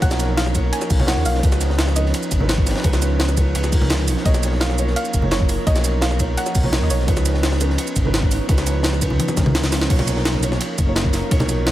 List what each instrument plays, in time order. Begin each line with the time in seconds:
Already playing: analog synth pad F3 C#4 D#4 A#4, felt piano D#4 F4 C#5
0.00 analog synth bass B1, felt piano F3 A#3 D#4 C#5, synth pluck F#5, kick, closed hi-hat, ride
0.11 snare, shaker
0.19 snare, closed hi-hat, ride, shaker
0.37 synth pluck F5, snare, closed hi-hat, ride
0.46 snare
0.54 felt piano A#3 D#4 F4 C#5, kick, closed hi-hat, ride, shaker
0.72 synth pluck G#5, closed hi-hat, ride
0.82 snare, shaker
0.90 analog synth bass B1, kick, closed hi-hat, open hi-hat, shaker
0.98 felt piano A#3 D#4 F4 C#5, high conga
1.07 synth pluck F#5, snare, closed hi-hat, ride
1.17 analog synth bass D#2
1.25 analog synth bass B1, synth pluck F5, open hi-hat, ride, shaker
1.35 snare
1.42 analog synth bass C#2, felt piano F3 C#4 D#4 B4, analog synth pad F3 B3, kick, closed hi-hat, ride
1.52 snare, shaker
1.61 snare, closed hi-hat, ride, shaker
1.70 snare
1.78 snare, closed hi-hat, ride
1.87 snare
1.96 felt piano F3 C#4 D#4 B4, synth pluck D#5, closed hi-hat, ride, shaker
2.06 snare
2.14 closed hi-hat, ride
2.23 shaker
2.31 analog synth bass G#1, kick, closed hi-hat, ride, shaker
2.39 felt piano F3 C#4 D#4 B4, high conga
2.49 snare, closed hi-hat, ride
2.58 kick
2.66 analog synth bass G#1, snare, open hi-hat, ride, shaker
2.71 snare, ride
2.75 snare, ride
2.80 felt piano F3, snare, ride
2.84 analog synth bass C#2, felt piano C#4 D#4 B4, kick, closed hi-hat, ride
2.93 snare, shaker
3.02 snare, closed hi-hat, ride, shaker
3.19 snare, closed hi-hat, ride
3.29 snare, shaker
3.37 felt piano F3 C#4 D#4 B4, kick, closed hi-hat, ride, shaker
3.55 analog synth bass C#2, closed hi-hat, ride
3.64 snare, shaker
3.71 felt piano F3 C#4 D#4 A#4, kick, closed hi-hat, open hi-hat, shaker
3.81 high conga
3.90 snare, closed hi-hat, ride
4.08 analog synth bass B1, open hi-hat, ride, shaker
4.17 snare
4.24 analog synth bass B1, felt piano A#3 D#4 F4 C#5, analog synth pad D#4 A#4, synth pluck D#5, kick, closed hi-hat, ride
4.34 snare, shaker
4.43 snare, closed hi-hat, ride, shaker
4.52 snare
4.60 synth pluck F5, snare, closed hi-hat, ride
4.69 snare
4.78 felt piano A#3 D#4 F4 C#5, closed hi-hat, ride, shaker
4.87 snare
4.96 synth pluck F5, closed hi-hat, ride
5.05 shaker
5.14 analog synth bass F#1, kick, closed hi-hat, ride, shaker
5.21 felt piano A#3 D#4 F4 C#5, high conga
5.31 synth pluck C#5, snare, closed hi-hat, ride
5.40 kick
5.49 analog synth bass F#1, open hi-hat, ride, shaker
5.66 analog synth bass B1, felt piano A#3 D#4 F4 C#5, synth pluck D#5, kick, closed hi-hat, ride
5.76 snare, shaker
5.85 snare, closed hi-hat, ride, shaker
6.01 synth pluck F5, snare, closed hi-hat, ride
6.11 snare
6.19 felt piano A#3 D#4 F4 C#5, kick, closed hi-hat, ride, shaker
6.37 synth pluck F#5, closed hi-hat, ride
6.46 snare, shaker
6.55 analog synth bass B1, kick, closed hi-hat, open hi-hat, shaker
6.62 felt piano A#3 D#4 F4 C#5, high conga
6.72 snare, closed hi-hat, ride
6.82 analog synth bass D#2, synth pluck D#5
6.90 analog synth bass B1, synth pluck C#5, open hi-hat, ride, shaker
7.00 snare
7.07 analog synth bass C#2, felt piano F3 C#4 D#4 B4, analog synth pad B3 C#4, kick, closed hi-hat, ride
7.17 snare, shaker
7.26 snare, closed hi-hat, ride, shaker
7.34 snare
7.43 snare, closed hi-hat, ride
7.52 snare
7.60 felt piano F3 C#4 D#4 B4, closed hi-hat, ride, shaker
7.70 snare
7.78 closed hi-hat, ride
7.87 shaker
7.96 analog synth bass G#1, kick, closed hi-hat, ride, shaker
8.04 felt piano F3 C#4 D#4 B4, high conga
8.14 snare, closed hi-hat, ride
8.23 kick
8.31 analog synth bass G#1, open hi-hat, ride, shaker
8.48 analog synth bass C#2, felt piano F3 C#4 D#4 B4, kick, closed hi-hat, ride
8.58 snare, shaker
8.66 snare, closed hi-hat, ride, shaker
8.83 snare, closed hi-hat, ride
8.93 snare
9.01 felt piano F3 C#4 D#4 B4, kick, closed hi-hat, ride, shaker
9.10 high conga
9.20 closed hi-hat, high tom, ride
9.28 snare, high tom, shaker
9.36 analog synth bass C#2, felt piano F3 C#4 D#4 A#4, kick, snare, closed hi-hat, high tom, ride, shaker
9.46 mid tom, high conga
9.55 snare, closed hi-hat, ride
9.64 snare, shaker
9.72 snare, open hi-hat, ride, shaker
9.81 snare
9.89 analog synth bass B1, analog synth pad F3 C#4 D#4 A#4, felt piano A#3 D#4 F4 C#5, kick, closed hi-hat, ride, crash
9.99 snare, high conga
10.07 snare, closed hi-hat, ride, shaker
10.17 snare
10.25 snare, closed hi-hat, ride
10.34 snare, high conga
10.42 felt piano A#3 D#4 F4 C#5, closed hi-hat, ride, shaker
10.52 snare
10.61 closed hi-hat, ride
10.78 analog synth bass F#1, kick, closed hi-hat, ride, shaker
10.86 felt piano A#3 D#4 F4 C#5
10.96 snare, closed hi-hat, ride
11.05 kick
11.13 analog synth bass F#1, snare, open hi-hat, ride, shaker
11.30 analog synth bass B1, felt piano A#3 D#4 F4 C#5, kick, closed hi-hat, ride
11.40 snare, high conga
11.49 snare, closed hi-hat, ride, shaker
11.67 snare, closed hi-hat, ride